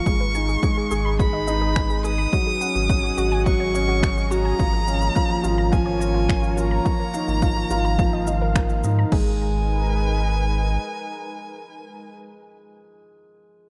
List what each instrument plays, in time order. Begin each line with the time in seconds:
Already playing: analog synth pad F3 F5, violin C#6
0.06 sub bass G#1, felt piano G#3, analog synth pad G#3, synth arpeggio sound G#4, kick, shaker
0.20 synth arpeggio sound B4
0.35 felt piano D#4, synth arpeggio sound G#5, shaker
0.49 synth arpeggio sound G#4, shaker
0.56 analog synth pad D#4
0.63 felt piano G#3, synth arpeggio sound G#5, kick, shaker
0.77 synth arpeggio sound G#4
0.91 sub bass G#1, synth arpeggio sound G#4, felt piano G#4, shaker
1.05 synth arpeggio sound B5
1.09 analog synth pad B4
1.19 felt piano G#3, synth arpeggio sound G#5, violin B5, kick, shaker
1.33 synth arpeggio sound D#5
1.47 felt piano D#4, synth arpeggio sound D#5, shaker
1.61 synth arpeggio sound G#4
1.75 synth arpeggio sound G#5, finger snap, kick, shaker
1.90 synth arpeggio sound G#4, shaker
2.04 synth arpeggio sound G#4, felt piano G#4, violin D#6, shaker
2.18 synth arpeggio sound B5
2.33 felt piano F#3, analog synth pad C#4, synth arpeggio sound F#4, kick, shaker
2.47 synth arpeggio sound G#4, analog synth pad G#4
2.61 felt piano C#4, synth arpeggio sound F#5, analog synth pad F#5, shaker
2.68 analog synth pad D#5
2.75 sub bass G#1, synth arpeggio sound F#4, shaker
2.89 felt piano F#3, synth arpeggio sound F#5, kick, shaker
3.03 synth arpeggio sound F#4
3.18 sub bass G#1, synth arpeggio sound F#4, felt piano F#4, shaker
3.32 synth arpeggio sound G#5
3.45 felt piano F#3, synth arpeggio sound F#5, violin C#6, kick, shaker
3.60 synth arpeggio sound C#5
3.74 felt piano C#4, synth arpeggio sound C#5, shaker
3.89 synth arpeggio sound F#4
4.02 felt piano F#3, synth arpeggio sound F#5, finger snap, kick, shaker
4.17 synth arpeggio sound F#4, shaker
4.31 felt piano F#4, synth arpeggio sound F#4, violin A#5, shaker
4.45 synth arpeggio sound G#5
4.59 sub bass G#1, felt piano F3, analog synth pad A#3, synth arpeggio sound F4, kick, shaker
4.73 synth arpeggio sound A#4
4.88 felt piano C#4, synth arpeggio sound F5, shaker
4.96 analog synth pad F4
5.02 synth arpeggio sound F4, shaker
5.15 felt piano F3, synth arpeggio sound F5, kick, shaker
5.30 synth arpeggio sound F4
5.44 sub bass G#1, synth arpeggio sound F4, felt piano F4, shaker
5.58 analog synth pad A#4 C#5, synth arpeggio sound A#5
5.72 felt piano F3, synth arpeggio sound F5, violin G#5, kick, shaker
5.86 synth arpeggio sound C#5
6.00 felt piano C#4, synth arpeggio sound C#5, shaker
6.14 synth arpeggio sound F4
6.29 felt piano F3, synth arpeggio sound F5, finger snap, kick, shaker
6.43 synth arpeggio sound F4, shaker
6.57 synth arpeggio sound F4, felt piano F4, violin A#5, shaker
6.71 synth arpeggio sound A#5
6.85 analog synth pad D#3, felt piano F3, synth arpeggio sound F4, kick, shaker
7.00 synth arpeggio sound A#4
7.14 felt piano D#4, synth arpeggio sound F5, shaker
7.28 sub bass G#1, synth arpeggio sound F4, shaker
7.42 felt piano F3, synth arpeggio sound F5, kick, shaker
7.56 synth arpeggio sound F4
7.70 sub bass G#1, synth arpeggio sound F4, felt piano F4, shaker
7.85 analog synth pad F5, synth arpeggio sound A#5
7.99 felt piano F3, synth arpeggio sound F5, kick, shaker
8.13 synth arpeggio sound D#5
8.27 felt piano F3, synth arpeggio sound D#5, shaker
8.42 synth arpeggio sound A#4
8.55 felt piano A#4, synth arpeggio sound A#5, finger snap, kick, shaker
8.70 synth arpeggio sound F4, shaker
8.84 sub bass G#2, felt piano D#4, synth arpeggio sound D#5, shaker
8.99 synth arpeggio sound A#5
9.12 sub bass G#1, analog synth pad G#3, felt piano G#3, synth arpeggio sound G#4, violin G#5, kick, crash
9.21 analog synth pad D#4
9.29 analog synth pad A#4
9.38 analog synth pad B4